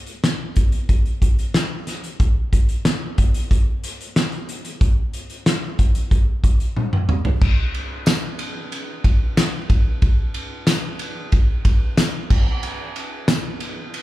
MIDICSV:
0, 0, Header, 1, 2, 480
1, 0, Start_track
1, 0, Tempo, 652174
1, 1618, Time_signature, 4, 2, 24, 8
1, 10321, End_track
2, 0, Start_track
2, 0, Title_t, "Drums"
2, 48, Note_on_c, 9, 42, 43
2, 122, Note_off_c, 9, 42, 0
2, 174, Note_on_c, 9, 38, 100
2, 177, Note_on_c, 9, 42, 77
2, 248, Note_off_c, 9, 38, 0
2, 251, Note_off_c, 9, 42, 0
2, 410, Note_on_c, 9, 42, 65
2, 417, Note_on_c, 9, 36, 74
2, 484, Note_off_c, 9, 42, 0
2, 490, Note_off_c, 9, 36, 0
2, 532, Note_on_c, 9, 42, 49
2, 606, Note_off_c, 9, 42, 0
2, 654, Note_on_c, 9, 42, 61
2, 656, Note_on_c, 9, 36, 75
2, 728, Note_off_c, 9, 42, 0
2, 729, Note_off_c, 9, 36, 0
2, 778, Note_on_c, 9, 42, 30
2, 851, Note_off_c, 9, 42, 0
2, 896, Note_on_c, 9, 36, 77
2, 900, Note_on_c, 9, 42, 66
2, 970, Note_off_c, 9, 36, 0
2, 974, Note_off_c, 9, 42, 0
2, 1021, Note_on_c, 9, 42, 43
2, 1095, Note_off_c, 9, 42, 0
2, 1136, Note_on_c, 9, 38, 99
2, 1138, Note_on_c, 9, 42, 72
2, 1210, Note_off_c, 9, 38, 0
2, 1211, Note_off_c, 9, 42, 0
2, 1376, Note_on_c, 9, 38, 31
2, 1377, Note_on_c, 9, 42, 64
2, 1449, Note_off_c, 9, 38, 0
2, 1450, Note_off_c, 9, 42, 0
2, 1499, Note_on_c, 9, 42, 55
2, 1572, Note_off_c, 9, 42, 0
2, 1618, Note_on_c, 9, 36, 94
2, 1618, Note_on_c, 9, 42, 58
2, 1691, Note_off_c, 9, 42, 0
2, 1692, Note_off_c, 9, 36, 0
2, 1860, Note_on_c, 9, 36, 77
2, 1862, Note_on_c, 9, 42, 61
2, 1933, Note_off_c, 9, 36, 0
2, 1936, Note_off_c, 9, 42, 0
2, 1978, Note_on_c, 9, 42, 44
2, 2051, Note_off_c, 9, 42, 0
2, 2098, Note_on_c, 9, 38, 103
2, 2102, Note_on_c, 9, 42, 83
2, 2172, Note_off_c, 9, 38, 0
2, 2175, Note_off_c, 9, 42, 0
2, 2340, Note_on_c, 9, 42, 72
2, 2342, Note_on_c, 9, 36, 75
2, 2414, Note_off_c, 9, 42, 0
2, 2416, Note_off_c, 9, 36, 0
2, 2461, Note_on_c, 9, 42, 54
2, 2535, Note_off_c, 9, 42, 0
2, 2582, Note_on_c, 9, 36, 80
2, 2585, Note_on_c, 9, 42, 63
2, 2656, Note_off_c, 9, 36, 0
2, 2658, Note_off_c, 9, 42, 0
2, 2824, Note_on_c, 9, 42, 68
2, 2897, Note_off_c, 9, 42, 0
2, 2949, Note_on_c, 9, 42, 42
2, 3023, Note_off_c, 9, 42, 0
2, 3063, Note_on_c, 9, 38, 104
2, 3065, Note_on_c, 9, 42, 73
2, 3137, Note_off_c, 9, 38, 0
2, 3139, Note_off_c, 9, 42, 0
2, 3179, Note_on_c, 9, 42, 33
2, 3252, Note_off_c, 9, 42, 0
2, 3303, Note_on_c, 9, 42, 62
2, 3377, Note_off_c, 9, 42, 0
2, 3420, Note_on_c, 9, 42, 54
2, 3493, Note_off_c, 9, 42, 0
2, 3540, Note_on_c, 9, 36, 95
2, 3541, Note_on_c, 9, 42, 58
2, 3614, Note_off_c, 9, 36, 0
2, 3615, Note_off_c, 9, 42, 0
2, 3779, Note_on_c, 9, 42, 59
2, 3853, Note_off_c, 9, 42, 0
2, 3899, Note_on_c, 9, 42, 43
2, 3972, Note_off_c, 9, 42, 0
2, 4020, Note_on_c, 9, 38, 105
2, 4023, Note_on_c, 9, 42, 84
2, 4093, Note_off_c, 9, 38, 0
2, 4097, Note_off_c, 9, 42, 0
2, 4260, Note_on_c, 9, 42, 72
2, 4261, Note_on_c, 9, 36, 77
2, 4333, Note_off_c, 9, 42, 0
2, 4335, Note_off_c, 9, 36, 0
2, 4379, Note_on_c, 9, 42, 54
2, 4453, Note_off_c, 9, 42, 0
2, 4499, Note_on_c, 9, 36, 81
2, 4500, Note_on_c, 9, 42, 61
2, 4573, Note_off_c, 9, 36, 0
2, 4574, Note_off_c, 9, 42, 0
2, 4737, Note_on_c, 9, 36, 85
2, 4739, Note_on_c, 9, 42, 68
2, 4811, Note_off_c, 9, 36, 0
2, 4813, Note_off_c, 9, 42, 0
2, 4859, Note_on_c, 9, 42, 44
2, 4932, Note_off_c, 9, 42, 0
2, 4979, Note_on_c, 9, 48, 49
2, 5053, Note_off_c, 9, 48, 0
2, 5100, Note_on_c, 9, 47, 63
2, 5173, Note_off_c, 9, 47, 0
2, 5216, Note_on_c, 9, 45, 82
2, 5290, Note_off_c, 9, 45, 0
2, 5335, Note_on_c, 9, 43, 82
2, 5409, Note_off_c, 9, 43, 0
2, 5457, Note_on_c, 9, 49, 96
2, 5458, Note_on_c, 9, 36, 103
2, 5530, Note_off_c, 9, 49, 0
2, 5531, Note_off_c, 9, 36, 0
2, 5700, Note_on_c, 9, 51, 54
2, 5774, Note_off_c, 9, 51, 0
2, 5933, Note_on_c, 9, 54, 79
2, 5938, Note_on_c, 9, 38, 106
2, 5941, Note_on_c, 9, 51, 75
2, 6006, Note_off_c, 9, 54, 0
2, 6012, Note_off_c, 9, 38, 0
2, 6015, Note_off_c, 9, 51, 0
2, 6173, Note_on_c, 9, 51, 62
2, 6247, Note_off_c, 9, 51, 0
2, 6418, Note_on_c, 9, 51, 56
2, 6492, Note_off_c, 9, 51, 0
2, 6656, Note_on_c, 9, 36, 85
2, 6658, Note_on_c, 9, 51, 58
2, 6730, Note_off_c, 9, 36, 0
2, 6732, Note_off_c, 9, 51, 0
2, 6899, Note_on_c, 9, 38, 105
2, 6899, Note_on_c, 9, 54, 79
2, 6900, Note_on_c, 9, 51, 68
2, 6972, Note_off_c, 9, 38, 0
2, 6973, Note_off_c, 9, 54, 0
2, 6974, Note_off_c, 9, 51, 0
2, 7137, Note_on_c, 9, 51, 56
2, 7138, Note_on_c, 9, 36, 98
2, 7210, Note_off_c, 9, 51, 0
2, 7211, Note_off_c, 9, 36, 0
2, 7375, Note_on_c, 9, 51, 51
2, 7376, Note_on_c, 9, 36, 101
2, 7448, Note_off_c, 9, 51, 0
2, 7450, Note_off_c, 9, 36, 0
2, 7612, Note_on_c, 9, 51, 57
2, 7686, Note_off_c, 9, 51, 0
2, 7851, Note_on_c, 9, 38, 104
2, 7854, Note_on_c, 9, 51, 74
2, 7854, Note_on_c, 9, 54, 85
2, 7925, Note_off_c, 9, 38, 0
2, 7928, Note_off_c, 9, 51, 0
2, 7928, Note_off_c, 9, 54, 0
2, 8090, Note_on_c, 9, 51, 60
2, 8164, Note_off_c, 9, 51, 0
2, 8332, Note_on_c, 9, 51, 54
2, 8336, Note_on_c, 9, 36, 85
2, 8406, Note_off_c, 9, 51, 0
2, 8409, Note_off_c, 9, 36, 0
2, 8573, Note_on_c, 9, 51, 62
2, 8574, Note_on_c, 9, 36, 81
2, 8647, Note_off_c, 9, 51, 0
2, 8648, Note_off_c, 9, 36, 0
2, 8813, Note_on_c, 9, 38, 108
2, 8815, Note_on_c, 9, 51, 68
2, 8817, Note_on_c, 9, 54, 80
2, 8887, Note_off_c, 9, 38, 0
2, 8888, Note_off_c, 9, 51, 0
2, 8891, Note_off_c, 9, 54, 0
2, 9055, Note_on_c, 9, 57, 70
2, 9056, Note_on_c, 9, 36, 98
2, 9129, Note_off_c, 9, 57, 0
2, 9130, Note_off_c, 9, 36, 0
2, 9295, Note_on_c, 9, 51, 54
2, 9368, Note_off_c, 9, 51, 0
2, 9537, Note_on_c, 9, 51, 53
2, 9611, Note_off_c, 9, 51, 0
2, 9774, Note_on_c, 9, 38, 109
2, 9777, Note_on_c, 9, 51, 73
2, 9777, Note_on_c, 9, 54, 82
2, 9847, Note_off_c, 9, 38, 0
2, 9850, Note_off_c, 9, 51, 0
2, 9851, Note_off_c, 9, 54, 0
2, 10013, Note_on_c, 9, 51, 64
2, 10086, Note_off_c, 9, 51, 0
2, 10258, Note_on_c, 9, 51, 55
2, 10321, Note_off_c, 9, 51, 0
2, 10321, End_track
0, 0, End_of_file